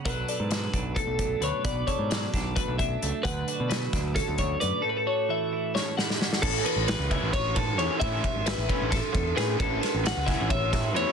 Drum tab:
CC |--------------|--------------|--------------|--------------|
RD |--------------|--------------|--------------|--------------|
HH |x-x-x-x-x-x-x-|x-x-x-x-x-x-x-|x-x-x-x-x-x-x-|--------------|
SD |----o---------|----o-o-------|----o-o-o-----|--------o-oooo|
BD |o-----o-o-o---|o-o---o-o-o---|o-----o-o-o---|--------------|

CC |x-------------|--------------|--------------|
RD |--x-x-x-x-x-x-|x-x-x-x-x-x-x-|x-x-x-x-x-x-x-|
HH |--------------|--------------|--------------|
SD |----o---------|----o---o---o-|--o-o-o---o---|
BD |o-----o-o-o---|o-o---o-o-o---|o-----o-o-o---|